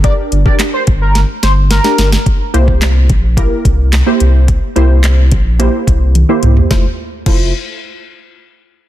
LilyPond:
<<
  \new Staff \with { instrumentName = "Analog synth lead" } { \time 4/4 \key c \mixolydian \tempo 4 = 108 d''16 r8 d''16 r16 c''16 r16 bes'8 r16 c''16 r16 bes'8. r16 | r1 | r1 | r1 | }
  \new Staff \with { instrumentName = "Synth stab" } { \time 4/4 \key c \mixolydian <d' g' bes'>8 r16 <d' g' bes'>4.~ <d' g' bes'>16 r8. <d' g' bes'>8 r16 | r8 <bes e' g' c''>4~ <bes e' g' c''>16 r16 <bes e' g' bes'>4 r16 <bes e' g' c''>8.~ | <bes e' g' c''>16 r16 <bes e' g' c''>4~ <bes e' g' c''>16 r16 <bes e' g' c''>4 r16 <bes e' g' c''>8. | <a e' f' c''>16 r8. <a e' f' c''>8 r2 r8 | }
  \new Staff \with { instrumentName = "Sub bass" } { \clef bass \time 4/4 \key c \mixolydian g,,8 g,,8 r8 g,,4 g,,4 g,,8 | r8 c,4 bes,,4 c,4 c,8~ | c,8 c,4 bes,,4 c,4 c,8 | f,,8 r8 f,,8 r2 r8 | }
  \new DrumStaff \with { instrumentName = "Drums" } \drummode { \time 4/4 <hh bd>8 hh16 bd16 <hc hh sn>8 <hh bd>8 <hh sn>8 <hh sn>8 <hh sn>16 sn16 <hh sn>16 sn16 | <hh bd>8 hh16 bd16 <hc hh sn>8 <hh bd>8 <hh bd>8 <hh bd>8 <hc hh sn>8 hh8 | <hh bd>8 hh8 <hc hh sn>8 <hh bd>8 hh8 <hh bd>8 <hh tommh>8 <hh toml>16 tomfh16 | <bd sn>4 <cymc bd>4 r4 r4 | }
>>